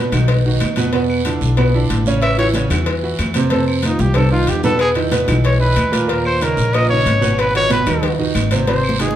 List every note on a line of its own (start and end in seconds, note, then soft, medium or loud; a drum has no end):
0.00 0.10 B4 medium
0.12 0.57 B1 loud
0.12 0.39 D#3 medium
0.12 0.39 D#4 medium
0.12 0.40 F#4 medium
0.12 cowbell medium
0.12 high conga soft
0.12 low conga medium
0.12 short guiro medium
0.12 claves medium
0.28 cowbell loud
0.28 high conga soft
0.28 low conga medium
0.28 long guiro medium
0.45 0.72 D#3 medium
0.45 0.72 D#4 medium
0.45 0.72 F#4 medium
0.45 high conga soft
0.60 1.36 E2 medium
0.60 cowbell medium
0.60 high conga medium
0.60 short guiro medium
0.60 claves medium
0.76 0.90 B2 medium
0.76 0.91 B3 medium
0.76 0.91 B4 medium
0.76 cowbell medium
0.76 high conga medium
0.76 short guiro medium
0.93 1.20 B2 medium
0.93 1.20 B3 medium
0.93 1.20 B4 medium
0.93 cowbell loud
0.93 high conga soft
0.93 long guiro medium
1.09 high conga soft
1.09 claves medium
1.25 1.52 D3 medium
1.25 1.52 D4 medium
1.25 1.53 E4 medium
1.25 cowbell medium
1.25 high conga medium
1.25 short guiro medium
1.41 1.86 B1 loud
1.41 short guiro medium
1.57 1.71 B2 medium
1.57 1.71 B3 medium
1.57 1.71 B4 medium
1.57 cowbell loud
1.57 long guiro medium
1.57 claves medium
1.74 2.00 D3 medium
1.74 2.01 D4 medium
1.74 2.01 E4 medium
1.90 2.65 A1 loud
1.90 cowbell medium
1.90 high conga medium
1.90 short guiro medium
2.06 2.33 C#3 medium
2.06 2.33 C#4 medium
2.06 2.33 C#5 medium
2.06 high conga medium
2.06 short guiro medium
2.22 2.37 E5 loud
2.22 cowbell loud
2.22 high conga soft
2.22 long guiro medium
2.22 claves medium
2.37 2.51 E3 medium
2.37 2.52 E4 medium
2.37 2.52 F#4 medium
2.37 2.49 C#5 medium
2.37 cowbell medium
2.37 high conga soft
2.54 2.68 C#3 medium
2.54 2.68 C#4 medium
2.54 2.68 C#5 medium
2.54 cowbell medium
2.54 high conga loud
2.54 short guiro medium
2.70 3.16 E2 loud
2.70 2.97 E3 medium
2.70 2.98 E4 medium
2.70 2.97 F#4 medium
2.70 cowbell medium
2.70 high conga soft
2.70 low conga medium
2.70 short guiro medium
2.70 claves medium
2.86 cowbell loud
2.86 high conga soft
2.86 low conga medium
2.86 long guiro medium
3.03 3.29 E3 medium
3.03 3.30 E4 medium
3.03 3.30 F#4 medium
3.03 high conga soft
3.19 3.94 F2 loud
3.19 cowbell medium
3.19 high conga medium
3.19 short guiro medium
3.19 claves medium
3.34 3.49 C3 loud
3.34 3.49 C4 medium
3.34 3.49 C5 loud
3.34 cowbell medium
3.34 high conga medium
3.34 short guiro medium
3.50 3.79 C3 medium
3.50 3.78 C4 medium
3.50 3.67 A4 medium
3.50 3.79 C5 medium
3.50 cowbell loud
3.50 high conga medium
3.50 long guiro medium
3.68 3.84 C4 medium
3.68 claves medium
3.83 4.11 D#3 medium
3.83 4.02 D#4 medium
3.83 4.11 D#4 medium
3.83 4.12 F4 medium
3.83 cowbell medium
3.83 high conga loud
3.83 short guiro medium
3.99 4.45 C2 loud
3.99 4.18 G4 medium
3.99 high conga loud
3.99 short guiro medium
4.14 4.29 C3 medium
4.14 4.29 C4 medium
4.14 4.32 A4 loud
4.14 4.30 C5 medium
4.14 cowbell loud
4.14 low conga medium
4.14 long guiro medium
4.14 claves medium
4.31 4.58 D#3 medium
4.31 4.59 D#4 medium
4.31 4.51 F4 medium
4.31 4.59 F4 medium
4.47 5.23 E2 loud
4.47 4.64 G4 medium
4.47 cowbell medium
4.47 low conga medium
4.47 short guiro medium
4.63 4.91 B2 medium
4.63 4.91 B3 medium
4.63 4.80 A4 loud
4.63 4.91 B4 loud
4.63 low conga loud
4.63 short guiro medium
4.79 4.90 G#4 loud
4.79 cowbell loud
4.79 high conga soft
4.79 long guiro medium
4.79 claves medium
4.95 5.09 D#3 medium
4.95 5.09 D#4 medium
4.95 5.10 E4 medium
4.95 cowbell medium
4.95 high conga soft
5.11 5.25 B2 medium
5.11 5.26 B3 medium
5.11 5.26 B4 medium
5.11 cowbell medium
5.11 high conga loud
5.11 short guiro medium
5.27 5.73 B1 loud
5.27 5.55 E3 medium
5.27 5.55 D#4 medium
5.27 5.55 E4 medium
5.27 cowbell medium
5.27 high conga soft
5.27 low conga medium
5.27 short guiro medium
5.27 claves medium
5.44 5.60 C#5 medium
5.44 cowbell loud
5.44 high conga soft
5.44 low conga medium
5.44 long guiro medium
5.59 5.87 E3 medium
5.59 5.87 D#4 medium
5.59 5.87 E4 medium
5.59 6.11 B4 loud
5.59 high conga soft
5.76 6.52 D#2 medium
5.76 cowbell medium
5.76 high conga medium
5.76 short guiro medium
5.76 claves medium
5.92 6.06 A#2 medium
5.92 6.06 A#3 loud
5.92 6.06 A#4 medium
5.92 cowbell medium
5.92 high conga medium
5.92 short guiro medium
6.08 6.35 A#2 medium
6.08 6.35 A#3 medium
6.08 6.35 A#4 medium
6.08 6.26 A#4 medium
6.08 cowbell loud
6.08 long guiro medium
6.25 6.44 C5 loud
6.25 high conga soft
6.25 claves medium
6.41 6.68 C#3 medium
6.41 6.68 C#4 medium
6.41 6.68 D#4 medium
6.41 6.76 A#4 medium
6.41 cowbell medium
6.41 high conga medium
6.41 short guiro medium
6.57 7.02 A#1 loud
6.57 short guiro medium
6.73 6.88 A#2 medium
6.73 6.88 A#3 medium
6.73 6.88 A#4 medium
6.73 6.89 D#5 loud
6.73 cowbell loud
6.73 high conga soft
6.73 long guiro medium
6.73 claves medium
6.90 7.17 C#3 medium
6.90 7.17 C#4 medium
6.90 7.17 D#4 medium
6.90 7.41 C#5 loud
6.90 high conga soft
7.06 7.81 G#1 loud
7.06 cowbell medium
7.06 high conga medium
7.06 short guiro medium
7.21 7.48 B2 medium
7.21 7.49 B3 loud
7.21 7.49 B4 loud
7.21 high conga medium
7.21 short guiro medium
7.38 7.55 B4 medium
7.38 cowbell loud
7.38 long guiro medium
7.38 claves medium
7.54 7.68 D#3 medium
7.54 7.68 D#4 medium
7.54 7.68 F#4 medium
7.54 7.71 C#5 loud
7.54 cowbell medium
7.54 high conga soft
7.70 7.84 B2 medium
7.70 7.84 B3 medium
7.70 7.84 B4 medium
7.70 8.17 B4 medium
7.70 cowbell medium
7.70 high conga loud
7.70 short guiro medium
7.86 8.32 D#2 loud
7.86 8.13 D#3 medium
7.86 8.13 D#4 medium
7.86 8.13 F#4 medium
7.86 cowbell medium
7.86 high conga soft
7.86 low conga medium
7.86 short guiro medium
7.86 claves medium
8.03 cowbell loud
8.03 high conga soft
8.03 low conga medium
8.03 long guiro medium
8.19 8.45 D#3 medium
8.19 8.46 D#4 medium
8.19 8.46 F#4 medium
8.19 high conga soft
8.35 9.10 G#1 loud
8.35 cowbell medium
8.35 high conga medium
8.35 short guiro medium
8.35 claves medium
8.51 8.65 C3 medium
8.51 8.65 C4 loud
8.51 8.65 C5 medium
8.51 cowbell medium
8.51 high conga medium
8.51 short guiro medium
8.67 8.94 C3 medium
8.67 8.94 C4 medium
8.67 9.02 C5 medium
8.67 8.95 C5 medium
8.67 cowbell loud
8.67 high conga medium
8.67 long guiro medium
8.84 claves medium
8.89 high conga loud
8.99 9.16 D#3 medium
8.99 9.16 D#4 medium
8.99 9.16 F#4 medium
8.99 9.16 G#4 medium
8.99 cowbell medium
8.99 high conga medium
8.99 short guiro medium
9.11 high conga medium